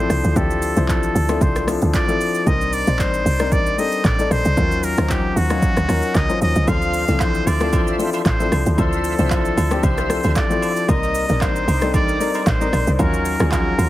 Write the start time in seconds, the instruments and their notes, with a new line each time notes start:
Already playing: grand piano E3 F3 C4 D4 C5, muted trumpet C5
0.00 grand piano E4 A4
0.10 log drum bass C2, cross-stick, open hi-hat, shaker
0.24 log drum bass D2, shaker
0.35 log drum bass D2, grand piano F3 C4 D4 E4 G4, muted trumpet A4, kick, shaker
0.51 shaker
0.62 open hi-hat, shaker
0.76 log drum bass C2, grand piano F3 C4 D4 E4 C5, shaker
0.88 muted trumpet A4, kick, clap, shaker
1.03 shaker
1.15 log drum bass D2, open hi-hat, shaker
1.29 grand piano F3 C4 D4 E4 A4, cross-stick, shaker
1.41 log drum bass C2, muted trumpet C5, kick, shaker
1.56 cross-stick, shaker
1.67 grand piano F3 C4 D4 E4 A4, cross-stick, open hi-hat, shaker
1.81 log drum bass D2, shaker
1.94 muted trumpet D5, kick, clap, shaker
2.08 grand piano F3 C4 D4 E4 A4, shaker
2.21 open hi-hat, shaker
2.35 shaker
2.46 log drum bass C2, grand piano G3 C4 D4 D#4 A#4, muted trumpet D#5, kick, shaker
2.61 shaker
2.73 muted trumpet D5, open hi-hat, shaker
2.87 log drum bass A#1, grand piano G3 C4 D4 D#4 C5, shaker
2.99 muted trumpet C5, kick, clap, shaker
3.14 shaker
3.26 log drum bass C2, open hi-hat, shaker
3.39 grand piano G3 C4 D4 D#4 A#4, cross-stick, shaker
3.52 muted trumpet D5, kick, shaker
3.66 shaker
3.78 grand piano G3 C4 D4 D#4 A4, muted trumpet D#5, open hi-hat, shaker
3.92 shaker
4.04 log drum bass A1, muted trumpet D5, kick, clap, shaker
4.18 grand piano G3 C4 D4 D#4 A4, shaker
4.31 log drum bass A#1, muted trumpet C5, cross-stick, open hi-hat, shaker
4.45 log drum bass C2, shaker
4.56 log drum bass D#2, grand piano F#3 C#4 D#4 F4 A#4, kick, shaker
4.72 shaker
4.83 muted trumpet A#4, open hi-hat, shaker
4.97 log drum bass D2, grand piano F#3 C#4 D#4 F4 C5, cross-stick, shaker
5.09 muted trumpet G4, kick, clap, shaker
5.36 log drum bass D#2, muted trumpet F#4, open hi-hat, shaker
5.50 grand piano F#3 C#4 D#4 C#5 F5, cross-stick, shaker
5.62 kick, shaker
5.77 log drum bass D2, cross-stick, shaker
5.88 log drum bass D#2, grand piano F#3 C#4 D#4 F4 A#4, cross-stick, open hi-hat, shaker
6.02 shaker
6.15 log drum bass C#2, muted trumpet D#5, kick, clap, shaker
6.29 grand piano F#3 C#4 D#4 F4 C5, shaker
6.41 log drum bass D#2, muted trumpet D#5, open hi-hat, shaker
6.55 log drum bass C#2, shaker
6.67 log drum bass D2, grand piano F3 C4 D4 F4 A4, tonewheel organ F4 C5 F5, muted trumpet F5, kick, high agogo, shaker
6.82 shaker
6.94 open hi-hat, shaker
7.08 log drum bass C2, grand piano E3 C4 D4 E4 A4, tonewheel organ F4 C5 E5, shaker
7.14 grand piano F3
7.20 muted trumpet C5, kick, clap, high agogo, low woodblock, shaker
7.35 shaker
7.46 log drum bass D2, tonewheel organ F4 C5 E5, muted trumpet D5, open hi-hat, high agogo, shaker
7.60 grand piano F3 C4 D4 E4 A4, cross-stick, shaker
7.72 tonewheel organ F4 C5 E5, kick, high agogo, shaker
7.87 shaker
7.99 grand piano F3 C4 D4 E4 A4, open hi-hat, shaker
8.13 tonewheel organ F4 C5 E5, high agogo, shaker
8.25 log drum bass A1, muted trumpet C5, kick, clap, low woodblock, shaker
8.39 grand piano F3 C4 D4 E4 A4, tonewheel organ F4 C5 E5, shaker
8.52 log drum bass C2, cross-stick, open hi-hat, high agogo, shaker
8.66 log drum bass D2, shaker
8.72 muted trumpet C5
8.78 log drum bass D2, grand piano F3 C4 D4 E4 C5, tonewheel organ F4 C5 E5, muted trumpet A4, kick, high agogo, shaker
8.93 shaker
9.04 open hi-hat, shaker
9.18 log drum bass C2, grand piano F3 C4 D4 E4 C5, tonewheel organ F4 C5 E5, shaker
9.30 muted trumpet A4, kick, clap, high agogo, low woodblock, shaker
9.45 shaker
9.57 log drum bass D2, tonewheel organ F4 C5 E5, open hi-hat, high agogo, shaker
9.71 grand piano F3 C4 D4 E4 G4, cross-stick, shaker
9.83 log drum bass C2, tonewheel organ F4 C5 E5, muted trumpet C5, kick, high agogo, shaker
9.98 cross-stick, shaker
10.09 grand piano F3 C4 D4 E4 A4, cross-stick, open hi-hat, shaker
10.23 log drum bass D2, tonewheel organ F4 C5 E5, high agogo, shaker
10.36 muted trumpet D5, kick, clap, low woodblock, shaker
10.50 grand piano F3 C4 D4 E4 A4, shaker
10.62 tonewheel organ F4 C5 E5, open hi-hat, high agogo, shaker
10.77 shaker
10.88 log drum bass C2, grand piano G3 A#3 C4 D#4 A#4, tonewheel organ D#4 A#4 D#5, muted trumpet D#5, kick, high agogo, shaker
11.03 shaker
11.15 open hi-hat, shaker
11.29 log drum bass A#1, grand piano G3 C4 D4 D#4 A#4, tonewheel organ D#4 A#4 D5, shaker
11.41 muted trumpet C5, kick, clap, high agogo, low woodblock, shaker
11.56 shaker
11.67 log drum bass C2, tonewheel organ D#4 A#4 D5, open hi-hat, high agogo, shaker
11.81 grand piano G3 C4 D4 D#4 A4, cross-stick, shaker
11.94 tonewheel organ D#4 A#4 D5, muted trumpet D5, kick, high agogo, shaker
12.08 shaker
12.20 grand piano G3 C4 D4 D#4 A#4, open hi-hat, shaker
12.34 tonewheel organ D#4 A#4 D5, high agogo, shaker
12.46 log drum bass A1, muted trumpet C5, kick, clap, low woodblock, shaker
12.60 grand piano G3 C4 D4 D#4 A#4, tonewheel organ D#4 A#4 D5, shaker
12.73 log drum bass A#1, cross-stick, open hi-hat, high agogo, shaker
12.87 log drum bass C2, shaker
12.94 muted trumpet C5
12.98 log drum bass D#2, grand piano F#3 C#4 D#4 F4 A#4, tonewheel organ F4 F#4 C#5, muted trumpet A#4, kick, high agogo, shaker
13.14 shaker
13.25 open hi-hat, shaker
13.39 log drum bass D2, grand piano F3 C#4 D#4 F4 G#4, tonewheel organ F4 F#4 C#5, cross-stick, shaker
13.46 grand piano F#3
13.52 muted trumpet A#4, kick, clap, high agogo, low woodblock, shaker
13.78 log drum bass D#2, tonewheel organ F4 F#4 C#5, open hi-hat, high agogo, shaker